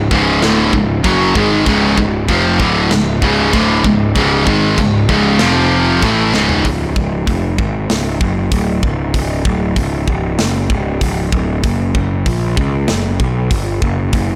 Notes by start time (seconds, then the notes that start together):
0.11 C#1 C#2 G#2 C#3, kick
0.42 D1 D2 A2 D3, snare, china
0.73 C#1 C#2 G#2, kick
1.04 F#1 F#2 C#3 F#3, kick, china
1.35 G#1 G#2 D#3 G#3, kick
1.66 C#1 C#2 G#2 C#3, kick, china
1.98 C#1 C#2 G#2, kick
2.28 F1 F2 C3 F3, kick, china
2.60 D1 D2 A2 D3, kick
2.91 C#1 C#2 G#2, snare, china
3.22 C#1 C#2 G#2 C#3, kick
3.53 D1 D2 A2 D3, kick, china
3.84 C#1 C#2 G#2, kick
4.16 C#1 C#2 G#2 C#3, kick, china
4.47 G#1 G#2 D#3 G#3, kick
4.78 C#1 C#2 G#2, kick, china
5.09 C#1 C#2 G#2 C#3, kick
5.39 F1 F2 C3 F3, snare, china
6.02 A1 A2 E3 A3, kick, china
6.34 C#1 C#2 G#2 C#3, snare
6.49 floor tom
6.65 C#1, kick, open hi-hat
6.96 C#1, kick
7.27 F1, kick, open hi-hat
7.58 G#1, kick
7.90 C#1, snare, open hi-hat
8.21 F#1, kick
8.52 D1, kick, open hi-hat
8.83 C#1, kick
9.14 C#1, kick, open hi-hat
9.45 D1, kick
9.76 C#1, kick, open hi-hat
10.08 C#1, kick
10.39 F#1, snare, open hi-hat
10.70 C#1, kick
11.01 C#1, kick, open hi-hat
11.32 D1, kick
11.63 F#1, kick, open hi-hat
11.95 F#1, kick
12.26 A#1, kick, open hi-hat
12.57 C#2, kick
12.88 F#1, snare, open hi-hat
13.20 B1, kick
13.51 G1, kick, open hi-hat
13.82 F#1, kick
14.13 F#1, kick, open hi-hat